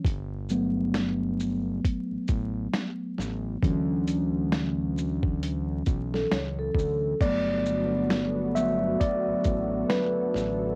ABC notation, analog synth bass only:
X:1
M:4/4
L:1/16
Q:"Swing 16ths" 1/4=67
K:Glyd
V:1 name="Analog synth bass" clef=bass
G,,,8 z A,,, A,,,2 z2 A,,,2 | D,,8- D,,2 B,,,2 C,,2 D,,2 | G,,,8 z A,,, A,,,2 z2 A,,,2 |]